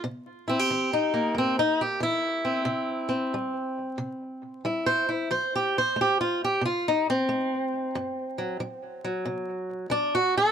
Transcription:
0.04 C3
0.48 C4 E4
0.59 G4
0.70 E3
0.93 D#4
1.14 A#3
1.35 G2 C4
1.59 D#4
1.81 G4
2.00 E3 E4
2.45 C4
2.65 C3
3.09 C4
3.34 G3
3.98 C3
4.65 G3 E4
4.86 C5
5.09 E4
5.31 F3 C5
5.55 G4
5.78 C5
5.96 A3
6.01 G4
6.21 F4
6.44 G4
6.61 C3
6.65 F4
6.88 D#4
7.10 C4
7.29 A3
7.95 F#2
8.38 F#3
8.60 F#3
9.04 F#3
9.25 C3
9.90 F#3 D4
10.15 F#4
10.37 A4

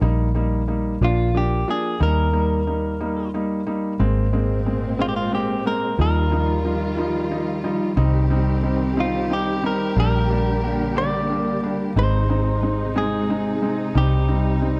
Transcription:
0.01 A#1 G3 A#3 D#4
0.35 G3 A#3 D#4
0.68 G3 A#3 D#4
1.01 A#1 F3 A#3 D4 F4
1.34 F3 A#3 D4 G4
1.68 F3 A#3 D4 G#4
2.00 D#2 G3 A#3 D#4 A#4
2.33 G3 A#3 D#4
2.67 G3 A#3 D#4
3.00 G3 A#3 D#4
3.34 G3 A#3 D#4
3.66 G3 A#3 D#4
3.99 G#1 A#2 G#3 A#3 C4
4.33 G#3 A#3 C4
4.66 G#3 A#3 C4
4.99 G#3 A#3 C4 F4
5.09 G4
5.16 F4
5.32 G#3 A#3 C4 G4
5.65 G#3 A#3 C4 A#4
5.98 D#2 D#3 F3 G3 D#4 F4 A#4
6.31 F3 G3 D#4
6.65 F3 G3 D#4
6.97 F3 G3 D#4
7.31 F3 G3 D#4
7.64 F3 G3 D#4
7.96 C2 D#3 G3 C4 D#4 G4
8.30 G3 C4 D#4
8.63 G3 C4 D#4
8.97 G3 C4 D#4 F4
9.30 G3 C4 D#4 G4
9.63 G3 C4 D#4 A#4
9.96 A#1 D3 G3 A#3 D4
10.00 A#4
10.30 G3 A#3 D4
10.63 G3 A#3 D4
10.96 G3 A#3 D4 D5
11.30 G3 A#3 D4
11.63 G3 A#3 D4
11.96 G#1 C3 G#3 C4 D#4 C5
12.29 G#3 C4 D#4
12.62 G#3 C4 D#4
12.95 G#3 C4 D#4 G#4
13.29 G#3 C4 D#4
13.62 G#3 C4 D#4
13.95 C2 G3 C4 D#4 G4
14.28 G3 C4 D#4
14.61 G3 C4 D#4

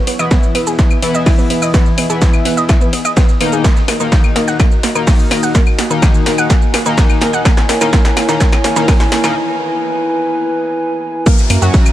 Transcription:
Already playing: E4 D#5 G#5
0.07 E2 B3, open hi-hat, ride
0.19 E2 E3 B3 E4 D#5, claves, shaker
0.31 B3, kick, snare, ride, shaker
0.43 shaker
0.55 E2 B3, open hi-hat, ride, claves
0.67 E2 G#4, snare, shaker
0.79 kick, snare, ride, shaker
0.91 claves, shaker
1.02 E2 E3 B3 E4, open hi-hat, ride
1.14 E2 D#5, shaker
1.26 E4, kick, snare, open hi-hat, claves, shaker
1.38 B3, shaker
1.50 E2 B3, open hi-hat, ride
1.62 E2 D#5, claves, shaker
1.74 B3, kick, snare, ride, shaker
1.86 shaker
1.98 E2 B3, open hi-hat, ride, claves
2.10 E2 E3 B3 E4 G#4, shaker
2.22 kick, snare, ride, shaker
2.34 claves, shaker
2.45 E2 B3, snare, open hi-hat, ride
2.57 E2 D#5, shaker
2.69 E4, kick, snare, ride, claves, shaker
2.81 B3, shaker
2.93 E2 B3, open hi-hat, ride
3.05 E2 D#5, ride, claves, shaker
3.16 B3, kick, snare, ride, shaker
3.29 snare, shaker
3.40 E2 D#3 A#3 B3 D#4, open hi-hat, ride, claves
3.53 E2 G#4, shaker
3.64 A#3 F#4 A#5, kick, snare, ride, shaker
3.76 snare, shaker
3.88 D#2 A#3, snare, open hi-hat, ride, claves
4.00 D#2 D#3 A#3 D#4 A#4, shaker
4.12 kick, snare, ride, shaker
4.24 claves, shaker
4.36 D#2 A#3, snare, open hi-hat, ride
4.48 D#2 F#5, snare, shaker
4.60 A#3, kick, snare, ride, claves, shaker
4.72 shaker
4.83 D#2 A#3, snare, open hi-hat, ride
4.95 D#2 D#3 A#3 D#4 A#4, claves, shaker
5.07 kick, snare, open hi-hat, shaker
5.19 shaker
5.31 D#2 A#3, snare, open hi-hat, ride, claves
5.43 D#2 F#5, shaker
5.55 A#3 G#5, kick, snare, ride, shaker
5.67 claves, shaker
5.79 D#2 A#3, snare, open hi-hat, ride
5.90 D#2 D#3 A#3 D#4 A#4, shaker
6.02 kick, snare, ride, claves, shaker
6.14 shaker
6.26 D#2 A#3, snare, open hi-hat, ride
6.38 D#2 F#5, claves, shaker
6.50 A#3, kick, snare, ride, shaker
6.62 shaker
6.74 D#2 A#3, snare, open hi-hat, ride, claves
6.86 D#2 D#3 A#3 D#4 A#4, ride, shaker
6.98 kick, snare, ride, shaker
7.10 snare, claves, shaker
7.21 D#2 A#3, snare, open hi-hat, ride
7.33 D#2 F#5, shaker
7.45 A#3 E4 C#5, kick, snare, ride, claves, shaker
7.57 snare, shaker
7.69 A#3, snare, open hi-hat, ride
7.81 D#3 A#3 D#4 A#4, snare, claves, shaker
7.93 A#3, kick, snare, ride, shaker
8.05 snare, shaker
8.17 C#2 A#3, snare, open hi-hat, ride, claves
8.29 D#3 A#3 D#4 A#4, snare, shaker
8.40 A#3, kick, snare, ride, shaker
8.52 snare, claves, shaker
8.64 C#2 A#3, snare, open hi-hat, ride
8.76 D#3 A#3 D#4 A#4, snare, shaker
8.88 A#3, kick, snare, open hi-hat, claves, shaker
9.00 snare, shaker
9.12 A#3, snare, open hi-hat, ride
9.24 C#2 D#3 A#3 D#4 A#4, snare, claves, shaker
9.36 B4
11.26 A#3 F#4 E5 A#5, kick, ride, downlifter, shaker
11.38 snare, shaker
11.50 F#2 A#3, open hi-hat, ride, claves
11.62 F#2 F#3 C#4 F#4, shaker
11.73 kick, snare, ride, shaker
11.86 claves, shaker

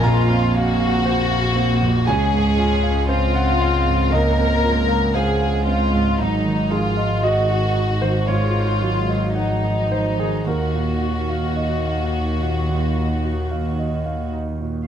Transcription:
Already playing: A#1 F2 C4 F4 C5 F5 G#5
0.03 A#1 A#3 F4 A#5
0.29 C4
0.55 F#4 F5
0.80 F5
1.05 A#3 C5
1.31 F5
1.56 C4
1.82 F2
2.07 C#2 C#4 G#4 G#5
2.34 G#2
2.58 F4
2.83 F5
3.09 C4 F4 C5
3.33 F5 F#5
3.59 C4 F5
3.86 G#2
4.12 C#2 A#3 A#4 D#5
4.38 C4
4.63 F4
4.88 F5
5.14 G#3 G#4 C5 F5
5.41 F5
5.66 C4 F4
5.92 G#2
6.18 G#1 G#2 F#3 D#4
6.45 D#3
6.71 F3 F4 G#4
6.97 D#5
7.22 D#3 F#4 D#5
7.49 D#5
7.75 D#4
8.02 D#3 C5
8.27 G#2 G#3 F4 C#5
8.54 D#4
8.80 F#3
9.08 D#5
9.35 F3 D#4 F#5
9.63 D#5
9.91 D#4 C5
10.19 D#3 G#4
10.46 D#2 D#3 F#4 A#4
10.74 A#2
11.02 F#4
11.29 F5
11.56 D#5
11.85 F5
12.13 D#4
12.41 A#2
12.69 D#2
12.97 D#4
13.24 F#4
13.51 F5
13.79 D#5
14.06 F5
14.33 D#4
14.60 A#2

